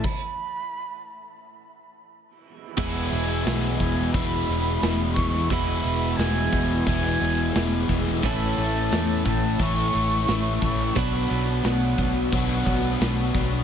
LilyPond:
<<
  \new Staff \with { instrumentName = "Flute" } { \time 4/4 \key e \mixolydian \tempo 4 = 88 b''2 r2 | gis''4. gis''8 b''4. cis'''8 | b''4 gis''4 gis''4. r8 | a''4. a''8 cis'''4. cis'''8 |
b''4 fis''4 fis''4. r8 | }
  \new Staff \with { instrumentName = "Overdriven electric guitar" } { \time 4/4 \key e \mixolydian r1 | <e gis b e'>2 <e gis b e'>2 | <e gis b e'>2 <e gis b e'>2 | <a, e a cis' e'>2 <a, e a cis' e'>2 |
<b, fis b d' fis'>2 <b, fis b d' fis'>2 | }
  \new Staff \with { instrumentName = "Clean electric guitar" } { \clef bass \time 4/4 \key e \mixolydian r1 | <e, b, e gis b e'>1 | <e, b, e gis b e'>1 | <a, e a cis' e'>1 |
<b, fis b d' fis'>1 | }
  \new Staff \with { instrumentName = "Overdriven electric guitar" } { \clef bass \time 4/4 \key e \mixolydian r1 | <e, b, e>8 <e, b, e>8 <e, b, e>8 <e, b, e>8 <e, b, e>8 <e, b, e>8 <e, b, e>8 <e, b, e>8 | <e, b, e>8 <e, b, e>8 <e, b, e>8 <e, b, e>8 <e, b, e>8 <e, b, e>8 <e, b, e>8 <e, b, e>8 | <a, e a>8 <a, e a>8 <a, e a>8 <a, e a>8 <a, e a>8 <a, e a>8 <a, e a>8 <a, e a>8 |
<b, fis b>8 <b, fis b>8 <b, fis b>8 <b, fis b>8 <b, fis b>8 <b, fis b>8 <b, fis b>8 <b, fis b>8 | }
  \new Staff \with { instrumentName = "Fingered electric bass" } { \clef bass \time 4/4 \key e \mixolydian r1 | e,,8 e,,8 b,,8 e,,8 e,,8 e,,8 e,,8 e,8 | e,,8 e,,8 e,,8 e,,8 e,,8 e,,8 e,,8 e,,8 | a,,8 a,,8 e,8 a,,8 a,,8 a,,8 a,,8 a,,8 |
b,,8 b,,8 b,,8 b,,8 b,,8 b,,8 b,,8 b,,8 | }
  \new DrumStaff \with { instrumentName = "Drums" } \drummode { \time 4/4 <cymc bd>4 r4 r4 r4 | <cymc bd>4 <hho sn>8 bd8 <hho bd>4 <hho sn>8 <bd sn>16 sn16 | <hho bd>4 <hho sn>8 bd8 <hho bd>4 <hho sn>8 bd16 sn16 | <hho bd>4 <hho sn>8 bd8 <hho bd>4 <hho sn>8 <bd sn>8 |
<hho bd>4 <hho sn>8 bd8 <hho bd>8 bd8 <hho sn>8 bd8 | }
>>